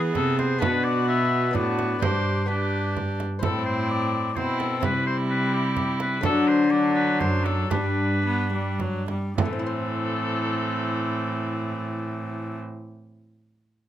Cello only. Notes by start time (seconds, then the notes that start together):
Already playing: E3
0.15 C3
0.62 B2
1.55 A2
2.02 G2
3.43 A2
4.37 B2
4.84 C3
6.24 D3
7.21 F#2
7.71 G2
9.37 A2